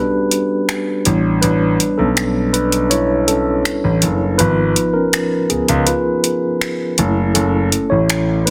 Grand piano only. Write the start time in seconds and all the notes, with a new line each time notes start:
1.06 A1
1.43 A1
1.99 B1
3.84 A1
4.03 F#1
4.40 G#1
5.50 C#2
5.69 C#2
6.99 F#1
7.36 F#1
7.91 A1